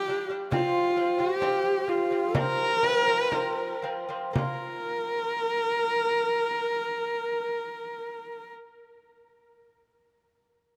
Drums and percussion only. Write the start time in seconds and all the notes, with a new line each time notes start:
0.52 frame drum
1.20 frame drum
1.42 frame drum
1.88 frame drum
2.35 frame drum
2.83 frame drum
3.08 frame drum
3.32 frame drum
4.36 frame drum